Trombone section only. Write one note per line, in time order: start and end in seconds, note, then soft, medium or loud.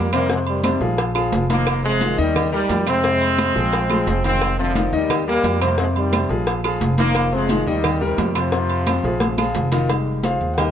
0.00 0.11 G3 medium
0.00 0.10 A#3 loud
0.14 0.29 G3 medium
0.14 0.29 A#3 loud
0.31 0.38 F3 medium
0.31 0.38 G#3 medium
0.48 0.95 D#3 medium
0.48 0.95 G3 medium
1.50 1.82 F3 medium
1.50 1.82 A#3 loud
1.85 2.17 F3 medium
1.85 2.17 G#3 loud
2.19 2.51 D#3 medium
2.19 2.51 G3 loud
2.54 2.85 D#3 medium
2.54 2.85 G3 loud
2.88 4.21 G#3 loud
2.88 4.21 C4 loud
4.25 4.57 G#3 medium
4.25 4.57 C4 loud
4.59 4.91 D3 medium
4.59 4.91 F3 loud
4.94 5.28 D#3 medium
4.94 5.28 G3 loud
5.29 5.60 G3 medium
5.29 5.60 A#3 loud
5.63 5.78 G3 medium
5.63 5.78 A#3 loud
5.80 5.88 F3 medium
5.80 5.87 G#3 medium
5.96 6.44 D#3 medium
5.96 6.44 G3 medium
6.99 7.31 F3 medium
6.99 7.30 A#3 loud
7.33 7.67 F3 medium
7.33 7.67 G#3 loud
7.68 8.01 D#3 medium
7.68 8.02 G3 loud
8.02 8.36 C3 medium
8.02 8.36 D#3 loud
8.37 9.69 C3 medium
8.37 9.70 F3 loud